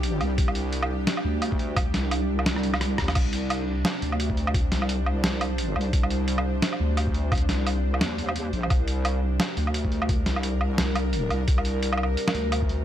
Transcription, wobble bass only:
0.00 0.20 C2 loud
0.21 0.37 C2 loud
0.38 1.06 C2 loud
1.25 1.93 D2 loud
1.94 2.45 C2 loud
2.46 2.97 C2 loud
2.98 3.14 D#2 loud
3.16 3.84 C2 loud
4.02 4.71 D2 loud
4.72 5.23 C2 loud
5.24 5.75 C2 loud
5.76 5.92 C2 medium
5.93 6.61 C2 loud
6.80 7.48 D2 loud
7.49 8.00 C2 loud
8.01 8.52 D#2 loud
8.53 8.69 A#1 loud
8.71 9.39 C2 loud
9.57 10.25 D2 loud
10.26 10.77 C2 loud
10.78 11.29 C2 loud
11.30 11.47 C2 loud
11.48 12.16 C2 loud
12.35 12.85 D2 loud

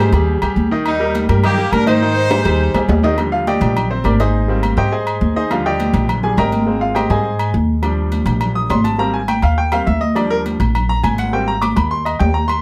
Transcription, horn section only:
0.00 0.11 D#4 medium
0.00 0.11 C5 loud
0.87 1.27 G3 medium
0.87 1.27 D#4 loud
1.45 1.71 A#3 medium
1.45 1.71 G4 loud
1.73 1.88 D4 medium
1.73 1.87 A#4 loud
1.87 2.85 D#4 medium
1.87 2.85 C5 loud

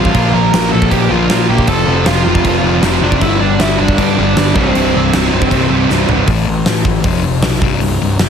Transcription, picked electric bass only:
0.00 0.14 A1 loud
0.14 0.33 A#1 medium
0.34 0.52 A#1 medium
0.54 0.72 A#1 medium
0.74 0.91 A#1 medium
0.92 1.10 A#1 medium
1.10 1.29 A#1 medium
1.30 1.48 A#1 medium
1.49 1.67 A#1 medium
1.68 1.86 F1 medium
1.86 2.05 F1 medium
2.06 2.25 F1 medium
2.25 2.44 F1 medium
2.45 2.63 F1 medium
2.64 2.81 F1 loud
2.82 3.01 F1 medium
3.02 3.21 F1 medium
3.21 3.40 G1 medium
3.41 3.59 G1 medium
3.61 3.79 G1 medium
3.79 3.97 G1 medium
3.98 4.17 G2 medium
4.18 4.36 G1 loud
4.37 4.55 G1 loud
4.74 4.93 C1 loud
4.95 5.13 C1 medium
5.13 5.31 C1 medium
5.32 5.51 C1 medium
5.51 5.69 C1 medium
5.70 5.88 C1 loud
5.89 6.08 C1 medium
6.08 6.27 G1 loud
6.28 6.45 A1 medium
6.47 6.65 A1 medium
6.66 6.84 A1 medium
6.85 7.04 A1 medium
7.04 7.40 F1 medium
7.42 7.60 B1 medium
7.61 7.79 C1 medium
7.81 7.99 C1 medium
8.01 8.18 C1 medium
8.19 8.29 F#1 medium

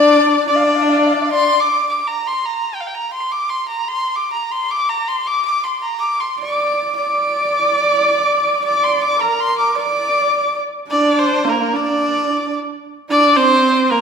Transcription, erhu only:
0.00 0.44 D5 medium
0.47 1.28 D5 medium
1.32 1.62 C6 medium
1.60 1.89 D6 medium
1.89 2.09 D6 medium
2.07 2.29 A#5 medium
2.27 2.47 C6 medium
2.45 2.76 A#5 medium
2.75 2.82 G5 medium
2.81 2.88 F5 soft
2.87 2.96 G5 medium
2.95 3.12 A#5 medium
3.13 3.33 C6 medium
3.32 3.50 D6 medium
3.49 3.67 C6 medium
3.68 3.90 A#5 medium
3.88 4.17 C6 medium
4.16 4.32 D6 medium
4.32 4.53 A#5 medium
4.51 4.72 C6 medium
4.71 4.90 D6 medium
4.89 5.09 A#5 medium
5.08 5.29 C6 medium
5.27 5.45 D6 medium
5.45 5.65 D6 medium
5.64 5.79 C6 medium
5.79 6.01 A#5 medium
5.79 5.83 C6 medium
5.99 6.21 D6 medium
6.20 6.39 C6 medium
6.39 6.93 D6 medium
6.96 8.60 D6 medium
8.64 8.85 D6 medium
8.83 9.03 C6 medium
9.02 9.23 D6 medium
9.21 9.42 A#5 medium
9.40 9.57 C6 medium
9.58 9.75 D6 medium
9.78 10.58 D6 medium
10.91 11.20 D5 medium
11.19 11.50 C5 medium
11.49 11.77 A#4 medium
11.76 12.56 D5 medium
13.11 13.38 D5 loud
13.36 13.92 C5 loud
13.90 14.01 A#4 medium

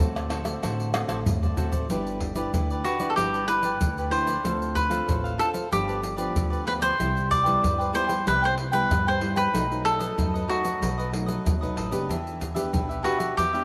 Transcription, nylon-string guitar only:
0.00 0.60 A2 soft
0.00 0.40 A3 medium
0.00 0.41 C4 medium
0.00 0.41 F#4 medium
0.44 0.88 A3 medium
0.44 0.89 C4 medium
0.44 0.89 F#4 medium
0.63 1.23 D3 medium
0.94 1.35 A3 medium
0.94 1.36 C4 medium
0.94 1.36 F#4 medium
1.27 1.87 A2 medium
1.57 1.84 A3 medium
1.57 1.85 C4 medium
1.57 1.85 F#4 medium
1.90 2.51 G3 medium
1.90 2.33 D4 medium
1.90 2.33 E4 medium
1.90 2.33 B4 medium
2.35 2.95 D4 medium
2.35 2.95 E4 medium
2.35 2.96 B4 medium
2.54 3.14 D3 soft
3.00 3.43 D4 medium
3.00 3.44 E4 medium
3.00 3.44 B4 medium
3.17 3.78 G3 medium
3.47 3.89 D4 soft
3.47 3.90 E4 medium
3.47 3.90 B4 medium
3.80 4.41 D3 medium
4.11 4.31 D4 medium
4.11 4.31 E4 medium
4.11 4.31 B4 medium
4.43 5.05 D3 medium
4.43 4.87 C4 medium
4.43 4.87 F4 medium
4.43 4.87 A4 medium
4.89 5.34 C4 medium
4.89 5.34 F4 medium
4.89 5.34 A4 medium
5.07 5.69 A2 soft
5.38 5.66 C4 medium
5.38 5.66 F4 medium
5.38 5.67 A4 medium
5.72 6.33 G2 medium
5.72 6.15 F3 medium
5.72 6.15 B3 medium
5.72 6.15 D4 medium
6.18 6.62 F3 medium
6.18 6.62 B3 medium
6.18 6.62 D4 medium
6.36 6.96 D3 medium
6.66 6.94 F3 medium
6.66 6.94 B3 medium
6.66 6.94 D4 medium
6.99 7.60 C3 medium
6.99 7.42 G3 medium
6.99 7.43 E4 medium
7.46 7.89 G3 medium
7.46 7.90 B3 medium
7.46 7.90 E4 medium
7.64 8.24 G2 soft
7.94 8.21 G3 medium
7.94 8.21 B3 medium
7.94 8.22 E4 medium
8.27 8.88 C3 medium
8.27 8.57 G3 soft
8.27 8.57 B3 soft
8.27 8.57 E4 medium
8.72 9.17 G3 medium
8.72 9.17 B3 medium
8.72 9.17 E4 medium
8.90 9.51 G2 medium
9.21 9.49 G3 medium
9.21 9.49 B3 medium
9.21 9.49 E4 medium
9.54 10.15 B2 medium
9.54 9.65 F#3 medium
9.54 9.65 A3 medium
9.54 9.66 D#4 medium
9.71 10.13 F#3 medium
9.71 10.14 A3 medium
9.71 10.14 D#4 medium
10.18 10.79 F#2 medium
10.18 10.45 F#3 medium
10.18 10.45 A3 medium
10.18 10.45 D#4 medium
10.49 10.91 F#3 medium
10.49 10.91 A3 medium
10.49 10.91 D#4 medium
10.81 11.42 B2 medium
11.12 11.56 F#3 medium
11.12 11.56 A3 medium
11.12 11.56 D#4 medium
11.45 12.06 F#2 medium
11.62 11.89 F#3 medium
11.62 11.89 A3 soft
11.62 11.89 D#4 medium
11.91 12.19 B3 medium
11.91 12.19 D4 medium
11.91 12.20 G4 medium
12.10 12.70 E3 medium
12.55 12.99 B3 medium
12.55 12.99 D4 medium
12.55 12.99 G4 medium
12.73 13.34 B2 medium
13.04 13.35 B3 medium
13.04 13.35 D4 medium
13.04 13.35 G4 medium
13.37 13.64 E3 medium
13.54 13.64 B3 medium
13.54 13.64 D4 medium
13.54 13.64 G4 medium

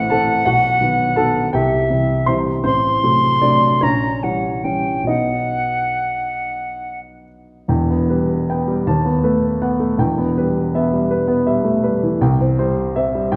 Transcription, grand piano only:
0.00 0.49 A1 medium
0.00 0.11 E3 soft
0.00 0.11 A3 soft
0.00 0.12 C4 soft
0.00 0.48 E4 medium
0.00 0.11 E5 medium
0.10 0.43 E3 soft
0.10 0.43 A3 soft
0.10 0.43 C4 soft
0.10 0.44 A4 medium
0.10 0.46 A5 medium
0.45 0.80 B1 medium
0.45 1.13 F#4 medium
0.45 1.17 F#5 medium
0.81 1.13 D#3 soft
0.81 1.13 F#3 soft
0.81 1.14 B3 soft
1.16 1.50 D#3 soft
1.16 1.50 F#3 soft
1.16 1.51 B3 soft
1.16 1.51 A4 medium
1.16 1.54 A5 medium
1.53 1.90 C2 medium
1.53 2.24 G4 soft
1.53 2.28 G5 medium
1.90 2.24 C3 soft
1.90 2.24 E3 soft
1.90 2.24 G3 soft
2.26 2.61 C3 soft
2.26 2.62 E3 soft
2.26 2.62 G3 soft
2.26 2.62 C5 medium
2.26 2.65 C6 medium
2.64 3.02 A1 soft
2.64 3.39 C4 medium
2.64 3.42 C5 medium
3.04 3.39 C3 soft
3.04 3.39 F#3 soft
3.04 3.39 A3 soft
3.42 3.79 C3 soft
3.42 3.79 F#3 soft
3.42 3.79 A3 soft
3.42 3.80 D4 medium
3.42 3.82 D5 medium
3.81 4.22 A#1 medium
3.81 4.22 C#4 medium
3.81 5.08 C#5 medium
4.23 4.62 E3 soft
4.23 4.62 G3 soft
4.23 4.62 C#4 soft
4.64 5.04 E3 soft
4.64 5.04 G3 soft
4.64 5.04 C#4 soft
5.03 7.62 B1 soft
5.03 7.64 F#3 soft
5.03 7.64 B3 soft
5.03 7.26 D#5 medium
5.08 7.22 D#4 soft
7.68 8.83 E1 medium
7.68 8.83 E2 medium
7.68 8.33 G5 medium
7.90 8.22 B3 medium
8.09 8.41 G3 medium
8.09 8.72 B4 medium
8.50 8.80 B3 medium
8.50 8.88 G5 medium
8.68 8.87 G3 medium
8.87 9.96 D#2 medium
8.87 9.46 A5 medium
9.05 9.35 B3 medium
9.23 9.53 A3 medium
9.23 9.83 B4 medium
9.62 9.92 B3 medium
9.62 9.99 F#5 medium
9.80 9.99 A3 medium
9.98 12.17 E1 medium
9.98 12.18 E2 medium
9.98 10.60 G5 medium
10.18 10.48 B3 medium
10.38 10.67 G3 medium
10.38 10.96 B4 medium
10.75 11.04 B3 medium
10.75 11.33 E5 medium
10.93 11.22 G3 medium
11.11 11.70 B4 medium
11.28 11.58 B3 medium
11.47 11.77 G3 medium
11.47 12.07 E5 medium
11.64 11.84 A3 medium
11.83 12.14 G3 medium
11.83 12.21 B4 medium
12.03 12.22 E3 medium
12.21 13.29 C2 medium
12.21 12.81 G5 medium
12.41 12.70 C4 medium
12.59 12.89 G3 medium
12.59 13.18 C5 medium
12.96 13.25 C4 medium
12.96 13.33 E5 medium
13.15 13.33 G3 medium
13.32 13.36 B1 medium
13.32 13.36 G5 medium

